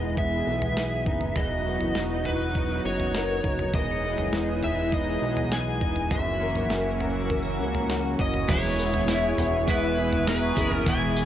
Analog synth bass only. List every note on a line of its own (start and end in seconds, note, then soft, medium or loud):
0.00 0.43 E1 loud
0.47 1.08 B1 medium
1.06 1.35 F#1 medium
1.36 1.78 E1 medium
1.81 1.95 F#1 medium
1.96 2.81 E1 medium
2.85 3.41 F#1 medium
3.44 3.72 F#1 medium
3.74 4.16 E1 loud
4.18 4.32 F#1 medium
4.33 5.18 E1 loud
5.22 5.83 B1 medium
5.81 6.10 E1 medium
6.11 6.54 F#1 loud
6.55 6.70 G#1 medium
6.70 7.61 F#1 loud
7.59 8.16 C#2 medium
8.19 8.47 F#1 medium
8.49 9.34 E1 loud
9.38 9.66 E1 loud
9.68 10.53 E1 loud
10.57 10.85 F#1 loud
10.87 11.25 E1 loud